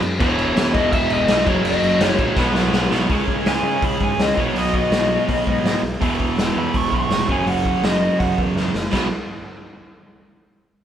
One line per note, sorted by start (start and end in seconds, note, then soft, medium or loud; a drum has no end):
0.01 0.17 F#2 medium
0.01 crash medium
0.19 0.36 E1 loud
0.19 0.73 E2 loud
0.19 0.73 B2 loud
0.19 0.73 E3 loud
0.19 0.76 C#5 loud
0.19 kick loud
0.19 crash medium
0.38 0.53 E1 loud
0.38 crash medium
0.56 0.71 E1 medium
0.56 snare loud
0.56 crash medium
0.74 0.90 E1 medium
0.74 1.27 E2 medium
0.74 1.28 B2 medium
0.74 1.27 E3 loud
0.74 0.91 D#5 loud
0.74 kick loud
0.74 crash medium
0.91 1.08 E1 loud
0.91 1.12 E5 loud
0.91 kick loud
0.91 crash medium
1.10 1.26 E1 medium
1.10 1.48 D#5 loud
1.10 crash medium
1.27 1.44 B1 loud
1.27 1.45 E2 medium
1.27 1.46 B2 medium
1.27 1.46 E3 medium
1.27 snare loud
1.27 crash medium
1.46 1.62 F#1 medium
1.46 1.99 F#2 loud
1.46 2.00 C#3 loud
1.46 2.01 F#3 loud
1.46 1.66 C#5 medium
1.46 kick loud
1.46 crash medium
1.64 1.80 F#1 medium
1.64 2.09 D#5 loud
1.64 crash loud
1.81 1.97 F#1 loud
1.81 crash medium
1.99 2.16 F#1 medium
1.99 2.36 F#2 medium
1.99 2.36 C#3 medium
1.99 2.37 F#3 loud
1.99 snare loud
1.99 crash loud
2.09 2.19 C#5 loud
2.18 2.35 A#1 loud
2.18 2.37 C#5 medium
2.18 kick medium
2.18 crash medium
2.36 2.52 B1 medium
2.36 2.90 B2 medium
2.36 2.90 F#3 medium
2.36 2.89 B3 loud
2.36 2.92 B4 medium
2.36 kick loud
2.36 snare medium
2.54 2.70 B1 medium
2.54 snare medium
2.72 2.88 B1 medium
2.72 snare medium
2.90 3.07 B1 medium
2.90 3.09 B2 medium
2.90 3.09 F#3 medium
2.90 3.08 B3 loud
2.90 snare medium
3.09 3.22 C#2 loud
3.09 4.35 C#3 loud
3.09 4.36 G#3 medium
3.09 4.37 C#4 medium
3.09 kick loud
3.09 open hi-hat medium
3.28 3.40 C#2 medium
3.28 kick medium
3.46 3.59 C#2 medium
3.46 3.82 G#5 loud
3.46 snare loud
3.46 open hi-hat medium
3.63 3.76 C#3 medium
3.82 3.95 C#2 medium
3.82 4.01 B5 loud
3.82 kick loud
3.82 open hi-hat medium
4.01 4.13 G#2 medium
4.01 4.20 G#5 medium
4.01 kick medium
4.18 4.31 C#2 medium
4.18 4.38 D#5 medium
4.18 snare loud
4.18 open hi-hat medium
4.37 4.50 B1 medium
4.37 5.81 B2 medium
4.37 5.82 F#3 loud
4.37 5.82 B3 loud
4.37 4.58 C#5 medium
4.37 kick medium
4.54 4.79 B1 medium
4.54 4.74 D#5 medium
4.54 open hi-hat medium
4.74 5.80 D#5 medium
4.74 kick medium
4.91 5.16 B1 medium
4.91 snare loud
4.91 open hi-hat medium
5.28 5.41 B1 medium
5.28 kick medium
5.28 open hi-hat medium
5.46 5.59 G#2 medium
5.46 kick medium
5.65 5.77 G#2 medium
5.65 snare loud
5.65 open hi-hat medium
5.83 5.95 B1 medium
6.00 6.14 E1 medium
6.00 7.27 E2 medium
6.00 7.28 B2 medium
6.00 7.28 E3 loud
6.00 kick loud
6.00 open hi-hat medium
6.20 6.32 E1 medium
6.20 kick medium
6.37 6.50 E1 medium
6.37 snare loud
6.37 open hi-hat soft
6.56 6.68 E2 medium
6.56 6.75 B5 medium
6.74 6.87 E1 medium
6.74 6.93 C#6 medium
6.74 kick loud
6.74 open hi-hat medium
6.92 7.05 B1 medium
6.92 7.29 C#6 loud
6.92 kick medium
7.10 7.23 F1 medium
7.10 snare loud
7.10 open hi-hat medium
7.28 7.41 F#1 medium
7.28 8.73 F#2 medium
7.28 8.74 C#3 medium
7.28 8.74 F#3 loud
7.28 7.48 G#5 medium
7.28 kick loud
7.46 7.72 F#1 medium
7.46 7.83 F#5 medium
7.46 open hi-hat medium
7.65 kick medium
7.83 8.08 F#1 medium
7.83 8.19 D#5 medium
7.83 snare loud
7.83 open hi-hat medium
8.19 8.32 F#1 medium
8.19 8.37 F#5 loud
8.19 kick loud
8.19 open hi-hat medium
8.38 8.51 E2 medium
8.38 kick medium
8.56 8.69 E2 medium
8.56 snare medium
8.74 8.87 F#1 medium
8.74 snare medium
8.91 9.10 B1 medium
8.91 9.06 B2 medium
8.91 9.07 F#3 loud
8.91 9.07 B3 medium
8.91 kick medium
8.91 snare medium
8.91 crash medium